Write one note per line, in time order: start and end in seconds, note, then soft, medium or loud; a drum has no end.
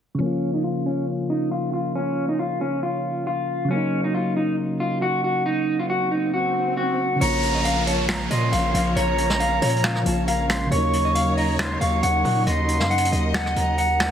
0.15 3.64 C#3 medium
0.15 3.66 F3 medium
0.20 3.68 A#3 medium
0.20 0.52 C#4 medium
0.26 3.69 F4 medium
0.54 0.63 D#4 medium
0.64 0.82 F4 medium
0.86 1.04 C#4 medium
1.30 1.48 D#4 medium
1.51 1.70 F4 medium
1.73 1.92 F4 medium
1.95 2.27 C#4 loud
2.29 2.38 D#4 medium
2.39 2.58 F4 medium
2.61 2.80 C#4 medium
2.83 3.24 F4 medium
3.27 3.68 F4 medium
3.65 7.14 C#3 medium
3.65 7.16 F#3 medium
3.71 7.18 A#3 medium
3.71 4.02 C#4 loud
3.76 7.20 D#4 medium
4.04 4.13 D#4 medium
4.14 4.33 F4 medium
4.37 4.55 D#4 medium
4.80 4.99 F4 medium
5.02 5.21 F#4 medium
5.24 5.42 F#4 medium
5.46 5.77 D#4 medium
5.46 swell medium
5.79 5.88 F4 medium
5.90 6.08 F#4 medium
6.11 6.30 D#4 medium
6.34 6.75 F#4 medium
6.77 7.18 F#4 medium
7.16 9.99 C#3 medium
7.16 10.01 F3 medium
7.21 8.27 A#1 loud
7.21 10.68 F3 medium
7.21 10.03 A#3 medium
7.21 10.68 C#4 medium
7.21 14.11 A#4 medium
7.21 10.68 C#5 medium
7.21 7.53 C#5 loud
7.21 7.83 A#5 loud
7.21 closed hi-hat medium
7.21 downlifter medium
7.27 10.05 F4 medium
7.43 closed hi-hat medium
7.55 7.63 D#5 medium
7.65 7.83 F5 medium
7.65 closed hi-hat medium
7.87 8.05 C#5 medium
7.87 8.07 A5 loud
7.87 closed hi-hat medium
8.09 8.30 A#5 medium
8.09 finger snap medium
8.09 snare loud
8.09 closed hi-hat medium
8.31 8.52 A#2 loud
8.31 8.49 D#5 medium
8.31 8.93 C6 medium
8.31 closed hi-hat medium
8.52 8.73 A#1 loud
8.52 8.71 F5 medium
8.52 closed hi-hat medium
8.74 8.95 A#1 loud
8.74 8.93 F5 medium
8.74 closed hi-hat medium
8.96 9.59 A#1 loud
8.96 9.28 C#5 loud
8.96 10.02 A#5 loud
8.96 closed hi-hat medium
9.18 closed hi-hat medium
9.30 9.38 D#5 medium
9.30 snare medium
9.40 9.58 F5 medium
9.40 closed hi-hat medium
9.62 10.04 A#2 loud
9.62 9.80 C#5 medium
9.62 closed hi-hat medium
9.62 open hi-hat medium
9.69 closed hi-hat medium
9.77 closed hi-hat soft
9.84 10.25 F5 medium
9.84 finger snap loud
9.84 snare loud
9.84 closed hi-hat medium
9.95 cross-stick medium
10.03 10.69 A#1 loud
10.03 10.65 C#3 medium
10.03 10.71 F3 medium
10.03 10.72 A#3 soft
10.03 10.27 A5 medium
10.03 closed hi-hat medium
10.08 10.73 F4 medium
10.28 10.69 F5 medium
10.28 10.48 A#5 medium
10.28 closed hi-hat medium
10.50 10.71 C6 medium
10.50 finger snap medium
10.50 snare medium
10.50 closed hi-hat medium
10.66 14.11 C#3 medium
10.66 14.11 F#3 medium
10.71 11.77 D#2 loud
10.71 14.11 F#3 medium
10.71 14.11 A#3 medium
10.71 14.11 D#4 medium
10.71 11.03 C#5 loud
10.71 12.45 C#5 medium
10.71 11.33 C#6 loud
10.71 closed hi-hat medium
10.77 14.11 D#4 medium
10.93 closed hi-hat medium
11.05 11.14 D#5 medium
11.15 11.34 F5 medium
11.15 closed hi-hat medium
11.37 11.56 D#5 medium
11.37 11.58 A#5 medium
11.37 open hi-hat medium
11.59 11.80 C6 medium
11.59 finger snap loud
11.59 snare loud
11.59 closed hi-hat medium
11.81 12.02 D#2 loud
11.81 11.99 F5 medium
11.81 12.43 C#6 medium
11.81 closed hi-hat medium
12.03 12.24 D#2 loud
12.03 12.21 F#5 medium
12.03 closed hi-hat medium
12.25 12.46 A#2 loud
12.25 12.43 F#5 medium
12.25 open hi-hat medium
12.46 12.82 D#2 loud
12.46 14.11 D#5 medium
12.46 12.78 D#5 loud
12.46 13.27 C6 loud
12.46 closed hi-hat medium
12.68 closed hi-hat medium
12.80 13.11 F#2 loud
12.80 12.89 F5 medium
12.80 snare medium
12.90 13.09 F#5 medium
12.90 closed hi-hat medium
12.98 closed hi-hat medium
13.05 closed hi-hat medium
13.12 13.54 D#2 loud
13.12 13.31 D#5 medium
13.12 closed hi-hat medium
13.34 13.75 F#5 medium
13.34 finger snap loud
13.34 snare loud
13.34 closed hi-hat medium
13.46 cross-stick medium
13.56 14.11 D#2 loud
13.56 14.11 A#5 medium
13.56 closed hi-hat medium
13.78 14.11 F#5 medium
13.78 closed hi-hat medium
14.00 finger snap medium
14.00 snare medium
14.00 closed hi-hat medium